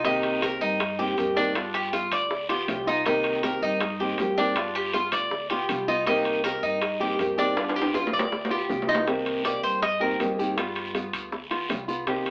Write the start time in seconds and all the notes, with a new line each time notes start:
Already playing: C2
0.04 C3 D#3 A#3 C4 D#4 G4, high bongo, high timbale, long guiro
0.23 high bongo, high timbale
0.42 D#3 A#3 C4 G4 A#4, high bongo, high timbale, short guiro
0.61 G2 D#4, short guiro
0.80 muted nylon-string guitar stroke, high bongo, high timbale, long guiro
0.99 D#3 A#3 C4 G4, high bongo
1.17 G2 D#3 A#3 C4 G4, high bongo, low bongo, high timbale, short guiro
1.36 D#3 A#3 C4 D4 G4, high bongo, short guiro
1.55 G3 B3 F4, high bongo, high timbale, long guiro
1.74 G4, high bongo, high timbale
1.93 G3 B3 F4, high bongo, high timbale, short guiro
2.12 D2 D5, high timbale, short guiro
2.31 muted nylon-string guitar stroke, high bongo, long guiro
2.49 B3 F4 G4, high bongo, high timbale
2.68 C2 G3 B3 F4, high bongo, low bongo, high timbale, low timbale, short guiro
2.87 B3 D#4 F4, high bongo, short guiro
3.06 C3 D#3 A#3 C4 D#4 G4, high bongo, high timbale, long guiro
3.24 high bongo, high timbale
3.43 D#3 A#3 C4 G4 A#4, high bongo, high timbale, short guiro
3.62 G2 D#4, short guiro
3.81 muted nylon-string guitar stroke, high bongo, high timbale, long guiro
4.00 D#3 A#3 C4 G4, high bongo
4.18 G2 D#3 A#3 C4 G4, high bongo, low bongo, high timbale, low timbale, short guiro
4.38 D#3 A#3 C4 D4 G4, high bongo, short guiro
4.56 G3 B3 F4, high bongo, high timbale, long guiro
4.75 G4, high bongo, high timbale
4.93 G3 B3 F4, high bongo, high timbale, short guiro
5.12 D2 D5, high timbale, short guiro
5.31 muted nylon-string guitar stroke, high bongo, long guiro
5.50 B3 F4 G4, high bongo, high timbale
5.69 C2 G3 B3 F4, high bongo, low bongo, high timbale, short guiro
5.88 B3 D#4 F4, high bongo, short guiro
6.06 C3 D#3 A#3 C4 D#4 G4, high bongo, high timbale, long guiro
6.25 high bongo, high timbale
6.44 D#3 A#3 C4 G4 A#4, high bongo, high timbale, short guiro
6.63 G2 D#4, short guiro
6.82 muted nylon-string guitar stroke, high bongo, high timbale, long guiro
7.00 D#3 A#3 C4 G4, high bongo
7.19 G2 D#3 A#3 C4 G4, high bongo, low bongo, high timbale, short guiro
7.38 D#3 A#3 C4 D4 G4, high bongo, short guiro
7.57 G3 B3 F4, high bongo, high timbale, long guiro
7.69 high timbale
7.76 G4, high bongo
7.82 high timbale
7.94 G3 B3 F4, high bongo, high timbale, short guiro
8.07 low timbale
8.13 D2 D5, short guiro
8.19 low timbale
8.32 muted nylon-string guitar stroke, high bongo, low timbale, long guiro
8.45 low timbale
8.50 B3 F4 G4, high bongo
8.69 C2 G3 B3 F4, high bongo, low bongo, low timbale, short guiro
8.82 low timbale
8.88 B3 D#4 F4, high bongo, short guiro
8.95 low timbale
9.07 C3 D#3 A#3 C4 G4, high bongo, high timbale, long guiro
9.26 high bongo, high timbale
9.44 D#3 A#3 C4 G4 D5, high bongo, high timbale, short guiro
9.63 G2 C5, short guiro
9.82 D#5, muted nylon-string guitar stroke, high bongo, high timbale, long guiro
10.00 D#3 A#3 C4 G4 A#4, high bongo
10.19 G2 D#3 A#3 C4 G4, high bongo, low bongo, high timbale, low timbale, short guiro
10.38 D#3 A#3 C4 G4, high bongo, short guiro
10.58 G3 B3 F4, high bongo, high timbale, long guiro
10.76 high bongo, high timbale
10.95 G3 B3 F4, high bongo, high timbale, short guiro
11.13 D2, high timbale, short guiro
11.32 muted nylon-string guitar stroke, high bongo, long guiro
11.51 B3 F4, high bongo, high timbale
11.69 C2 G3 B3 F4, high bongo, low bongo, high timbale, low timbale, short guiro
11.88 B3 F4, high bongo, short guiro
12.07 C3 D#3 A#3 C4 G4, high bongo, high timbale, long guiro
12.26 high bongo, high timbale